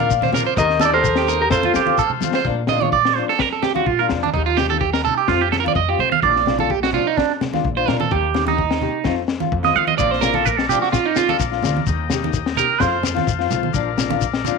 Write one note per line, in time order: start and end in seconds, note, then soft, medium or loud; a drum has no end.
0.00 0.42 A#2 medium
0.00 0.14 A#3 soft
0.00 0.13 D4 medium
0.00 0.13 F4 medium
0.00 0.30 D5 medium
0.00 0.56 D5 medium
0.00 0.30 F5 loud
0.00 0.53 F5 medium
0.10 kick medium
0.10 shekere medium
0.22 0.33 C5 medium
0.22 snare soft
0.22 high conga medium
0.22 low conga medium
0.32 0.48 F3 medium
0.32 0.49 A#3 medium
0.32 0.49 F4 medium
0.32 0.46 A#4 medium
0.32 muted nylon-string guitar stroke medium
0.32 snare medium
0.32 low conga medium
0.32 shekere medium
0.46 0.57 C5 medium
0.56 1.51 D#2 loud
0.56 0.72 D#3 medium
0.56 0.72 A#3 medium
0.56 0.73 D#4 medium
0.56 0.73 G4 medium
0.56 0.85 A#4 medium
0.56 1.50 D#5 medium
0.56 0.85 D#5 loud
0.56 1.50 G5 medium
0.56 muted clean electric guitar stroke medium
0.56 kick medium
0.56 shekere medium
0.70 snare soft
0.80 0.93 D#3 medium
0.80 0.94 D#4 medium
0.80 0.92 G4 medium
0.80 0.93 A4 medium
0.80 muted nylon-string guitar stroke medium
0.80 snare medium
0.80 high conga medium
0.80 shekere medium
0.85 0.93 D5 medium
0.93 1.08 A#3 soft
0.93 1.07 G4 medium
0.93 1.38 A4 medium
0.93 1.16 A#4 medium
0.93 1.37 C5 medium
1.04 kick medium
1.04 shekere loud
1.15 1.28 G4 medium
1.15 snare medium
1.27 1.42 D#3 medium
1.27 1.43 A#3 medium
1.27 1.43 D#4 medium
1.27 1.50 A#4 medium
1.27 muted nylon-string guitar stroke medium
1.27 shekere medium
1.41 1.50 G4 medium
1.41 1.51 A#4 medium
1.50 1.69 F2 medium
1.50 1.64 A3 medium
1.50 1.64 C4 medium
1.50 1.63 F4 medium
1.50 1.95 A4 medium
1.50 1.95 C5 medium
1.50 1.64 C5 medium
1.50 2.45 C5 medium
1.50 2.45 F5 medium
1.50 2.45 A5 medium
1.50 kick medium
1.50 snare medium
1.50 shekere medium
1.63 1.79 C4 soft
1.63 1.77 F4 soft
1.63 1.75 F4 medium
1.63 high conga medium
1.74 2.30 F3 medium
1.74 1.98 G4 medium
1.74 snare medium
1.74 shekere medium
1.86 2.02 C4 soft
1.86 2.00 F4 medium
1.86 high conga medium
1.98 2.11 A4 medium
1.98 kick medium
1.98 shekere medium
2.10 low conga medium
2.20 2.36 A3 medium
2.20 2.37 C4 medium
2.20 2.38 F4 medium
2.20 high tom soft
2.20 high conga medium
2.20 shekere medium
2.33 2.45 C5 medium
2.33 snare medium
2.44 3.19 A#2 medium
2.44 2.60 F3 medium
2.44 2.60 A#3 medium
2.44 2.60 D4 medium
2.44 2.61 F4 medium
2.44 kick medium
2.67 2.82 F3 medium
2.67 2.82 A#3 medium
2.67 2.81 D4 medium
2.67 2.80 F4 medium
2.67 2.83 D#5 medium
2.67 snare medium
2.67 low conga medium
2.81 2.96 A#3 soft
2.81 2.96 D4 soft
2.81 2.95 F4 soft
2.81 2.92 C#5 medium
2.81 high conga medium
2.92 3.16 D5 medium
2.92 kick medium
3.05 snare medium
3.15 3.31 F3 medium
3.15 3.31 A#3 medium
3.15 3.32 D4 medium
3.15 3.32 F4 medium
3.15 3.28 C5 medium
3.29 3.40 A4 medium
3.29 snare soft
3.39 3.52 A#4 medium
3.39 kick medium
3.39 snare medium
3.53 3.63 A4 medium
3.63 3.75 G4 medium
3.63 snare medium
3.63 low conga medium
3.74 3.90 A#3 soft
3.74 3.90 D4 soft
3.74 3.89 F4 medium
3.74 3.86 F#4 medium
3.74 high conga medium
3.86 4.05 A#2 medium
3.86 3.99 F4 medium
3.86 kick medium
3.99 4.09 A#3 soft
3.99 4.11 D4 soft
3.99 4.11 F4 medium
3.99 4.06 A#4 medium
4.09 4.29 E2 medium
4.09 4.25 F3 medium
4.09 4.25 A#3 medium
4.09 4.26 D4 medium
4.09 4.26 F4 medium
4.09 snare medium
4.09 low conga medium
4.23 4.33 D4 medium
4.23 high conga medium
4.34 5.08 D#2 medium
4.34 4.49 D#3 medium
4.34 4.49 A#3 medium
4.34 4.46 D#4 medium
4.34 4.50 D#4 medium
4.34 4.50 G4 medium
4.34 kick medium
4.46 4.57 F4 medium
4.57 4.70 D#3 medium
4.57 4.70 A#3 medium
4.57 4.70 G4 medium
4.57 4.69 G4 medium
4.57 snare medium
4.57 low conga medium
4.70 4.85 A#3 soft
4.70 4.84 D#4 soft
4.70 4.84 G4 medium
4.70 4.80 A4 medium
4.70 high conga medium
4.81 4.93 G4 medium
4.81 kick medium
4.93 5.04 A#4 medium
4.93 snare medium
5.04 5.20 A#3 medium
5.04 5.20 D#4 medium
5.04 5.17 A4 medium
5.04 low conga medium
5.17 5.28 G4 medium
5.28 5.65 F2 medium
5.28 5.44 A3 medium
5.28 5.44 C4 medium
5.28 5.41 F4 medium
5.28 5.44 F4 medium
5.28 kick medium
5.28 snare medium
5.41 5.52 G4 medium
5.52 5.60 A4 medium
5.52 snare medium
5.52 low conga medium
5.60 5.78 F4 medium
5.60 5.67 A#4 medium
5.66 5.79 C4 soft
5.66 5.75 D5 medium
5.66 high conga medium
5.75 5.94 F2 medium
5.75 5.88 D#5 medium
5.75 kick medium
5.89 5.99 C4 soft
5.89 6.00 F4 medium
5.89 5.99 G4 medium
5.99 6.17 F3 medium
5.99 6.14 A3 medium
5.99 6.15 C4 medium
5.99 6.15 F4 medium
5.99 6.12 C5 medium
5.99 low conga medium
6.12 6.23 F5 loud
6.12 high conga medium
6.23 6.97 A#1 loud
6.23 6.38 F3 medium
6.23 6.38 A#3 medium
6.23 6.38 D4 medium
6.23 6.39 F4 medium
6.23 6.57 D5 medium
6.23 kick medium
6.36 snare soft
6.45 6.58 F3 medium
6.45 6.59 A#3 medium
6.45 6.59 D4 medium
6.45 6.57 F4 medium
6.45 snare medium
6.45 low conga medium
6.59 6.73 A#3 soft
6.59 6.73 D4 soft
6.59 6.72 F4 medium
6.59 6.71 A4 medium
6.59 high conga medium
6.70 6.83 G4 medium
6.70 kick medium
6.83 6.93 F#4 medium
6.83 snare medium
6.92 7.08 F3 medium
6.92 7.09 A#3 medium
6.92 7.09 D4 medium
6.92 7.06 F4 medium
6.92 7.09 F4 medium
6.92 low conga medium
7.07 7.18 D#4 medium
7.17 7.32 D4 medium
7.17 kick medium
7.17 snare medium
7.41 snare medium
7.41 low conga medium
7.54 7.68 A#3 soft
7.54 7.67 D4 medium
7.54 7.67 F4 medium
7.54 snare soft
7.54 high conga medium
7.65 7.83 A#1 medium
7.65 kick medium
7.76 7.87 A#3 soft
7.76 7.88 D4 medium
7.76 7.87 F4 medium
7.76 7.88 C5 medium
7.87 8.07 A#2 medium
7.87 8.02 F3 medium
7.87 8.03 A#3 medium
7.87 8.03 D4 medium
7.87 8.04 F4 medium
7.87 8.00 A#4 medium
7.87 snare medium
7.87 low conga medium
8.00 8.11 A4 medium
8.00 high conga medium
8.11 8.85 D#2 medium
8.11 8.26 D#3 medium
8.11 8.26 A#3 medium
8.11 8.27 D#4 medium
8.11 8.45 G4 medium
8.11 8.27 G4 medium
8.11 kick medium
8.34 8.47 D#3 medium
8.34 8.48 A#3 medium
8.34 8.48 D#4 medium
8.34 8.46 G4 medium
8.34 snare medium
8.34 low conga medium
8.47 8.62 A#3 soft
8.47 9.14 D#4 medium
8.47 8.62 D#4 soft
8.47 8.61 G4 soft
8.47 high conga medium
8.58 kick medium
8.71 snare medium
8.80 8.96 D#3 medium
8.80 8.96 A#3 medium
8.80 8.97 D#4 medium
8.80 8.97 G4 medium
8.80 low conga medium
9.04 9.42 F2 medium
9.04 9.19 A3 medium
9.04 9.20 C4 medium
9.04 9.20 F4 medium
9.04 kick medium
9.04 snare medium
9.28 snare medium
9.40 9.54 F4 medium
9.40 high conga medium
9.52 9.70 F2 medium
9.52 kick medium
9.63 9.75 C4 soft
9.63 9.75 F4 soft
9.63 9.76 D#5 medium
9.63 snare soft
9.63 high conga medium
9.74 9.94 F3 medium
9.74 9.90 A3 medium
9.74 9.91 C4 medium
9.74 9.91 F4 medium
9.74 9.87 F5 loud
9.87 9.97 D#5 medium
9.87 high conga medium
9.98 10.73 A#1 medium
9.98 10.13 F3 medium
9.98 10.14 A#3 medium
9.98 10.14 D4 medium
9.98 10.14 F4 medium
9.98 10.11 D5 medium
9.98 11.85 D5 medium
9.98 11.85 F5 medium
9.98 12.78 A#5 medium
9.98 kick medium
9.98 shekere medium
10.11 10.22 C5 medium
10.11 snare soft
10.20 10.34 F3 medium
10.20 10.35 A#3 medium
10.20 10.35 D4 medium
10.20 10.32 F4 medium
10.20 10.34 A#4 loud
10.20 snare medium
10.20 low conga medium
10.20 shekere medium
10.33 10.49 A#3 soft
10.33 10.48 F4 medium
10.33 10.45 A4 medium
10.33 high conga medium
10.45 10.58 A#4 medium
10.45 kick medium
10.45 shekere medium
10.58 10.69 A4 medium
10.58 snare medium
10.68 10.84 F3 medium
10.68 10.84 A#3 medium
10.68 10.85 D4 medium
10.68 10.85 F4 medium
10.68 10.81 G4 loud
10.68 low conga medium
10.68 shekere medium
10.82 10.92 F#4 medium
10.82 snare soft
10.92 11.05 F4 medium
10.92 kick medium
10.92 snare medium
10.92 shekere medium
11.06 11.16 D#4 medium
11.16 11.29 F4 medium
11.16 snare medium
11.16 low conga medium
11.16 shekere medium
11.28 11.44 A#3 soft
11.28 11.43 D4 soft
11.28 11.42 F4 medium
11.28 11.40 A4 medium
11.28 snare soft
11.28 high conga medium
11.39 11.58 A#1 medium
11.39 muted clean electric guitar stroke medium
11.39 kick medium
11.39 shekere medium
11.51 11.62 A#3 soft
11.51 11.63 D4 medium
11.51 11.63 F4 medium
11.51 snare soft
11.62 11.82 D2 medium
11.62 11.78 F3 medium
11.62 11.78 A#3 medium
11.62 11.79 D4 medium
11.62 11.79 F4 medium
11.62 snare medium
11.62 low conga medium
11.62 shekere medium
11.77 high conga medium
11.87 12.60 D#2 loud
11.87 12.02 D#3 medium
11.87 12.02 A#3 medium
11.87 12.81 D#5 medium
11.87 12.81 G5 medium
11.87 muted nylon-string guitar stroke medium
11.87 kick medium
11.87 shekere medium
12.10 12.23 D#3 medium
12.10 12.24 A#3 medium
12.10 12.24 D#4 medium
12.10 12.23 G4 medium
12.10 snare medium
12.10 low conga medium
12.10 shekere medium
12.24 12.38 A#3 soft
12.24 12.38 D#4 medium
12.24 12.37 G4 medium
12.24 high conga medium
12.34 kick medium
12.34 shekere loud
12.46 snare medium
12.57 12.72 D#3 medium
12.57 12.72 A#3 medium
12.57 12.73 D#4 medium
12.57 12.73 G4 medium
12.57 12.81 A#4 medium
12.57 low conga medium
12.57 shekere medium
12.78 13.17 F2 loud
12.78 12.95 A3 medium
12.78 12.96 C4 medium
12.78 12.96 F4 medium
12.78 13.73 C5 medium
12.78 13.04 C5 medium
12.78 14.58 F5 medium
12.78 13.72 A5 medium
12.78 kick medium
12.78 snare medium
12.78 shekere medium
13.03 snare medium
13.03 low conga medium
13.03 shekere medium
13.15 13.31 C4 soft
13.15 13.29 F4 medium
13.15 snare soft
13.15 high conga medium
13.27 13.46 F2 medium
13.27 kick medium
13.27 shekere medium
13.39 13.50 C4 medium
13.39 13.51 F4 medium
13.39 snare soft
13.50 13.70 B1 medium
13.50 13.66 A3 medium
13.50 13.66 C4 medium
13.50 13.67 F4 medium
13.50 low conga medium
13.50 shekere medium
13.63 high conga medium
13.73 14.48 A#1 medium
13.73 13.89 F3 medium
13.73 13.89 A#3 medium
13.73 13.90 D4 medium
13.73 13.90 F4 medium
13.73 14.58 D5 medium
13.73 14.58 A#5 medium
13.73 kick medium
13.73 shekere medium
13.97 14.11 F3 medium
13.97 14.11 A#3 medium
13.97 14.11 D4 medium
13.97 14.09 F4 medium
13.97 snare medium
13.97 low conga medium
13.97 shekere medium
14.10 14.26 A#3 soft
14.10 14.25 D4 medium
14.10 14.24 F4 medium
14.10 high conga medium
14.21 kick medium
14.21 shekere medium
14.34 snare medium
14.44 14.58 F3 medium
14.44 14.58 A#3 medium
14.44 14.58 D4 medium
14.44 14.58 F4 medium
14.44 low conga medium
14.44 shekere medium